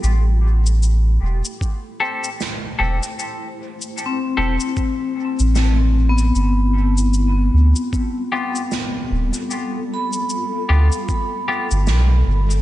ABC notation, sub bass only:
X:1
M:4/4
L:1/16
Q:"Swing 16ths" 1/4=76
K:Am
V:1 name="Sub bass" clef=bass
A,,,6 E,,, z6 z E,,, z | z6 E,,, z4 A,,,4- A,,, | G,,,6 D,, z6 z D,,, z | z6 D,, z4 G,,, B,,,2 G,,,2 |]